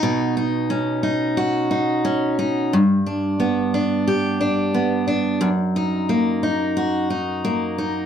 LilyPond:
\new Staff \with { instrumentName = "Steel-string acoustic guitar" } { \time 4/4 \key b \major \tempo 4 = 89 <b, dis' fis'>8 dis'8 cis'8 dis'8 fis'8 dis'8 cis'8 dis'8 | g,8 d'8 b8 d'8 g'8 d'8 b8 d'8 | fis,8 dis'8 ais8 dis'8 fis'8 dis'8 ais8 dis'8 | }